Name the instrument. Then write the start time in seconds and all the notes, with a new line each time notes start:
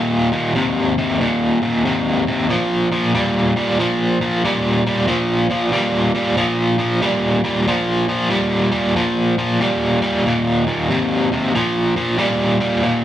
overdriven electric guitar
Already playing: D#2 A#2
0.32 D#2 A#2
0.55 D#2 C3
0.98 D#2 C3
1.20 D#2 A#2
1.62 D#2 A#2
1.85 D#2 C3
2.27 D#2 C3
2.50 A#2 F3
2.92 A#2 F3
3.15 A#2 G3
3.56 A#2 G3
3.79 A#2 F3
4.21 A#2 F3
4.45 A#2 G3
4.87 A#2 G3
5.07 A#2 F3
5.50 A#2 F3
5.72 A#2 G3
6.15 A#2 G3
6.37 A#2 F3
6.78 A#2 F3
7.02 A#2 G3
7.44 A#2 G3
7.68 A#2 F3
8.08 A#2 F3
8.30 A#2 G3
8.71 A#2 G3
8.96 A#2 F3
9.38 A#2 F3
9.60 A#2 G3
10.02 A#2 G3
10.26 D#2 A#2
10.67 D#2 A#2
10.90 D#2 C3
11.32 D#2 C3
11.55 A#2 F3
11.96 A#2 F3
12.18 A#2 G3
12.60 A#2 G3
12.83 D#2 A#2